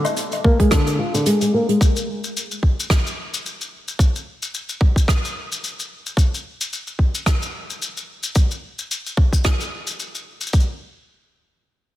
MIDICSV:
0, 0, Header, 1, 3, 480
1, 0, Start_track
1, 0, Tempo, 545455
1, 1588, Time_signature, 4, 2, 24, 8
1, 10526, End_track
2, 0, Start_track
2, 0, Title_t, "Steel-string acoustic guitar"
2, 0, Program_c, 0, 25
2, 391, Note_on_c, 0, 58, 62
2, 510, Note_off_c, 0, 58, 0
2, 524, Note_on_c, 0, 56, 67
2, 618, Note_off_c, 0, 56, 0
2, 631, Note_on_c, 0, 50, 74
2, 859, Note_off_c, 0, 50, 0
2, 867, Note_on_c, 0, 65, 84
2, 989, Note_off_c, 0, 65, 0
2, 1005, Note_on_c, 0, 50, 65
2, 1104, Note_off_c, 0, 50, 0
2, 1111, Note_on_c, 0, 56, 70
2, 1231, Note_off_c, 0, 56, 0
2, 1248, Note_on_c, 0, 56, 67
2, 1346, Note_off_c, 0, 56, 0
2, 1355, Note_on_c, 0, 58, 66
2, 1473, Note_off_c, 0, 58, 0
2, 1484, Note_on_c, 0, 56, 70
2, 1578, Note_off_c, 0, 56, 0
2, 10526, End_track
3, 0, Start_track
3, 0, Title_t, "Drums"
3, 38, Note_on_c, 9, 42, 41
3, 42, Note_on_c, 9, 77, 67
3, 51, Note_on_c, 9, 82, 69
3, 126, Note_off_c, 9, 42, 0
3, 130, Note_off_c, 9, 77, 0
3, 139, Note_off_c, 9, 82, 0
3, 144, Note_on_c, 9, 42, 66
3, 147, Note_on_c, 9, 82, 67
3, 232, Note_off_c, 9, 42, 0
3, 235, Note_off_c, 9, 82, 0
3, 279, Note_on_c, 9, 82, 39
3, 286, Note_on_c, 9, 42, 43
3, 290, Note_on_c, 9, 77, 44
3, 367, Note_off_c, 9, 82, 0
3, 374, Note_off_c, 9, 42, 0
3, 378, Note_off_c, 9, 77, 0
3, 391, Note_on_c, 9, 36, 86
3, 479, Note_off_c, 9, 36, 0
3, 524, Note_on_c, 9, 42, 50
3, 525, Note_on_c, 9, 36, 58
3, 612, Note_off_c, 9, 42, 0
3, 613, Note_off_c, 9, 36, 0
3, 625, Note_on_c, 9, 37, 70
3, 625, Note_on_c, 9, 82, 56
3, 628, Note_on_c, 9, 42, 70
3, 631, Note_on_c, 9, 36, 96
3, 713, Note_off_c, 9, 37, 0
3, 713, Note_off_c, 9, 82, 0
3, 716, Note_off_c, 9, 42, 0
3, 719, Note_off_c, 9, 36, 0
3, 762, Note_on_c, 9, 42, 46
3, 768, Note_on_c, 9, 82, 43
3, 850, Note_off_c, 9, 42, 0
3, 856, Note_off_c, 9, 82, 0
3, 1006, Note_on_c, 9, 42, 47
3, 1009, Note_on_c, 9, 82, 68
3, 1094, Note_off_c, 9, 42, 0
3, 1097, Note_off_c, 9, 82, 0
3, 1109, Note_on_c, 9, 42, 71
3, 1110, Note_on_c, 9, 82, 63
3, 1197, Note_off_c, 9, 42, 0
3, 1198, Note_off_c, 9, 82, 0
3, 1243, Note_on_c, 9, 82, 44
3, 1247, Note_on_c, 9, 42, 47
3, 1331, Note_off_c, 9, 82, 0
3, 1335, Note_off_c, 9, 42, 0
3, 1485, Note_on_c, 9, 42, 44
3, 1573, Note_off_c, 9, 42, 0
3, 1592, Note_on_c, 9, 36, 98
3, 1597, Note_on_c, 9, 82, 66
3, 1605, Note_off_c, 9, 82, 0
3, 1605, Note_on_c, 9, 82, 75
3, 1680, Note_off_c, 9, 36, 0
3, 1693, Note_off_c, 9, 82, 0
3, 1727, Note_on_c, 9, 82, 44
3, 1815, Note_off_c, 9, 82, 0
3, 1970, Note_on_c, 9, 82, 67
3, 2058, Note_off_c, 9, 82, 0
3, 2084, Note_on_c, 9, 82, 58
3, 2172, Note_off_c, 9, 82, 0
3, 2213, Note_on_c, 9, 82, 42
3, 2301, Note_off_c, 9, 82, 0
3, 2313, Note_on_c, 9, 36, 52
3, 2401, Note_off_c, 9, 36, 0
3, 2463, Note_on_c, 9, 82, 77
3, 2551, Note_off_c, 9, 82, 0
3, 2552, Note_on_c, 9, 36, 97
3, 2552, Note_on_c, 9, 37, 64
3, 2566, Note_on_c, 9, 82, 61
3, 2640, Note_off_c, 9, 36, 0
3, 2640, Note_off_c, 9, 37, 0
3, 2654, Note_off_c, 9, 82, 0
3, 2699, Note_on_c, 9, 82, 41
3, 2787, Note_off_c, 9, 82, 0
3, 2938, Note_on_c, 9, 82, 73
3, 3026, Note_off_c, 9, 82, 0
3, 3044, Note_on_c, 9, 82, 63
3, 3132, Note_off_c, 9, 82, 0
3, 3178, Note_on_c, 9, 82, 41
3, 3266, Note_off_c, 9, 82, 0
3, 3414, Note_on_c, 9, 82, 65
3, 3502, Note_off_c, 9, 82, 0
3, 3512, Note_on_c, 9, 36, 94
3, 3521, Note_on_c, 9, 82, 62
3, 3600, Note_off_c, 9, 36, 0
3, 3609, Note_off_c, 9, 82, 0
3, 3658, Note_on_c, 9, 82, 46
3, 3746, Note_off_c, 9, 82, 0
3, 3894, Note_on_c, 9, 82, 60
3, 3982, Note_off_c, 9, 82, 0
3, 3999, Note_on_c, 9, 82, 59
3, 4087, Note_off_c, 9, 82, 0
3, 4128, Note_on_c, 9, 82, 39
3, 4216, Note_off_c, 9, 82, 0
3, 4231, Note_on_c, 9, 36, 85
3, 4319, Note_off_c, 9, 36, 0
3, 4365, Note_on_c, 9, 36, 53
3, 4379, Note_on_c, 9, 82, 62
3, 4453, Note_off_c, 9, 36, 0
3, 4467, Note_off_c, 9, 82, 0
3, 4471, Note_on_c, 9, 36, 96
3, 4477, Note_on_c, 9, 37, 64
3, 4479, Note_on_c, 9, 82, 56
3, 4559, Note_off_c, 9, 36, 0
3, 4565, Note_off_c, 9, 37, 0
3, 4567, Note_off_c, 9, 82, 0
3, 4619, Note_on_c, 9, 82, 41
3, 4707, Note_off_c, 9, 82, 0
3, 4858, Note_on_c, 9, 82, 60
3, 4946, Note_off_c, 9, 82, 0
3, 4963, Note_on_c, 9, 82, 54
3, 5051, Note_off_c, 9, 82, 0
3, 5100, Note_on_c, 9, 82, 43
3, 5188, Note_off_c, 9, 82, 0
3, 5335, Note_on_c, 9, 82, 64
3, 5423, Note_off_c, 9, 82, 0
3, 5429, Note_on_c, 9, 36, 91
3, 5443, Note_on_c, 9, 82, 60
3, 5517, Note_off_c, 9, 36, 0
3, 5531, Note_off_c, 9, 82, 0
3, 5581, Note_on_c, 9, 82, 40
3, 5669, Note_off_c, 9, 82, 0
3, 5816, Note_on_c, 9, 82, 69
3, 5904, Note_off_c, 9, 82, 0
3, 5922, Note_on_c, 9, 82, 54
3, 6010, Note_off_c, 9, 82, 0
3, 6046, Note_on_c, 9, 82, 39
3, 6134, Note_off_c, 9, 82, 0
3, 6150, Note_on_c, 9, 36, 46
3, 6238, Note_off_c, 9, 36, 0
3, 6290, Note_on_c, 9, 82, 61
3, 6378, Note_off_c, 9, 82, 0
3, 6391, Note_on_c, 9, 36, 85
3, 6392, Note_on_c, 9, 37, 65
3, 6393, Note_on_c, 9, 82, 58
3, 6479, Note_off_c, 9, 36, 0
3, 6480, Note_off_c, 9, 37, 0
3, 6481, Note_off_c, 9, 82, 0
3, 6533, Note_on_c, 9, 82, 46
3, 6621, Note_off_c, 9, 82, 0
3, 6776, Note_on_c, 9, 82, 62
3, 6864, Note_off_c, 9, 82, 0
3, 6880, Note_on_c, 9, 82, 55
3, 6968, Note_off_c, 9, 82, 0
3, 7014, Note_on_c, 9, 82, 39
3, 7102, Note_off_c, 9, 82, 0
3, 7244, Note_on_c, 9, 82, 63
3, 7332, Note_off_c, 9, 82, 0
3, 7349, Note_on_c, 9, 82, 57
3, 7353, Note_on_c, 9, 36, 102
3, 7437, Note_off_c, 9, 82, 0
3, 7441, Note_off_c, 9, 36, 0
3, 7491, Note_on_c, 9, 82, 44
3, 7579, Note_off_c, 9, 82, 0
3, 7733, Note_on_c, 9, 82, 56
3, 7821, Note_off_c, 9, 82, 0
3, 7842, Note_on_c, 9, 82, 65
3, 7930, Note_off_c, 9, 82, 0
3, 7976, Note_on_c, 9, 82, 42
3, 8064, Note_off_c, 9, 82, 0
3, 8072, Note_on_c, 9, 36, 85
3, 8160, Note_off_c, 9, 36, 0
3, 8207, Note_on_c, 9, 36, 50
3, 8211, Note_on_c, 9, 82, 63
3, 8295, Note_off_c, 9, 36, 0
3, 8299, Note_off_c, 9, 82, 0
3, 8309, Note_on_c, 9, 82, 51
3, 8313, Note_on_c, 9, 36, 86
3, 8315, Note_on_c, 9, 37, 66
3, 8397, Note_off_c, 9, 82, 0
3, 8401, Note_off_c, 9, 36, 0
3, 8403, Note_off_c, 9, 37, 0
3, 8452, Note_on_c, 9, 82, 38
3, 8540, Note_off_c, 9, 82, 0
3, 8686, Note_on_c, 9, 82, 62
3, 8774, Note_off_c, 9, 82, 0
3, 8797, Note_on_c, 9, 82, 57
3, 8885, Note_off_c, 9, 82, 0
3, 8931, Note_on_c, 9, 82, 36
3, 9019, Note_off_c, 9, 82, 0
3, 9160, Note_on_c, 9, 82, 55
3, 9211, Note_off_c, 9, 82, 0
3, 9211, Note_on_c, 9, 82, 46
3, 9265, Note_off_c, 9, 82, 0
3, 9265, Note_on_c, 9, 82, 42
3, 9269, Note_on_c, 9, 36, 90
3, 9328, Note_off_c, 9, 82, 0
3, 9328, Note_on_c, 9, 82, 31
3, 9357, Note_off_c, 9, 36, 0
3, 9416, Note_off_c, 9, 82, 0
3, 10526, End_track
0, 0, End_of_file